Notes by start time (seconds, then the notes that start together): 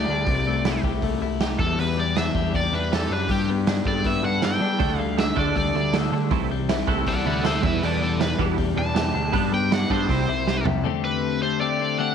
Already playing: A3 G4 D5
0.08 D2 D4
0.26 C2 C3, kick, open hi-hat
0.47 A3
0.65 E4, snare, open hi-hat
0.83 C2 G4, kick
1.02 A3, kick, open hi-hat
1.21 C2 E4
1.40 G4, snare, open hi-hat
1.59 E2 A4, kick
1.78 E2 B4, open hi-hat
1.97 G3 D5
2.16 D4 E5, snare, open hi-hat
2.35 E2 G4, kick
2.54 G3 D5, kick, open hi-hat
2.72 E2 D4 B4
2.92 G4 A4, snare, open hi-hat
3.10 F#2 D4 B4
3.29 G2 G3 G4, kick, open hi-hat
3.50 B3
3.67 D4, snare, open hi-hat
3.85 G2 A4 D5, kick
4.04 B3 E5, kick, open hi-hat
4.23 G2 D4 F#5
4.42 A4 G5, snare, open hi-hat
4.61 G3 D4
4.79 D2 D3 A3 D4, kick, open hi-hat
4.99 D3 G3 A3 F5
5.18 D3 A3 D4 E5, snare, open hi-hat
5.36 D2 D3 A3 D4 A4 D5, kick
5.55 D3 G3 A3 D5, kick, open hi-hat
5.74 D2 D3 A3 D4
5.93 D3 A3 A4, snare, open hi-hat
6.12 D3 A3 D4
6.31 C2 C3 E3 A3, kick, open hi-hat
6.50 C3 E3 G3
6.69 C3 E3 E4, snare, open hi-hat
6.87 C2 C3 E3 A3 A4, kick
7.07 C3 E3 G3 D5 F#5, kick, open hi-hat
7.25 D2 C3 E3 E4 D5 F#5
7.43 C3 E3 A4 C5 E5, snare, open hi-hat
7.62 E2 B2 E3 B4 E5, kick
7.81 E2 B2 E3 A4 D5, open hi-hat
8.01 E2 B2 G3 A4 D5
8.20 E2 B2 D4 B4, snare, open hi-hat
8.39 E2 B2 E3 G4, kick
8.58 E2 B2 G3, kick, open hi-hat
8.76 E2 B2 D4 A5
8.95 E2 B2 G4, snare, open hi-hat
9.14 D2 E2 B2 D4
9.33 G2 G3 B3 D4, kick, open hi-hat
9.52 G3 B3 G5
9.71 G3 B3 D4 F#5, snare, open hi-hat
9.90 G2 G3 B3 D4 A4 C5, kick
10.09 C2 C3 G3 C4, kick, open hi-hat
10.28 C2 C3 G3 E4
10.47 C3 G3 G4, snare
10.65 C2 C3 G3 E4, floor tom
10.84 D3 A3 C4 G4
11.05 B4
11.42 A3 C4 G4 C5
11.60 D3 A3 C4 G4 D5
11.80 A3 C4 G4
11.98 D3 A3 C4 G4 F#5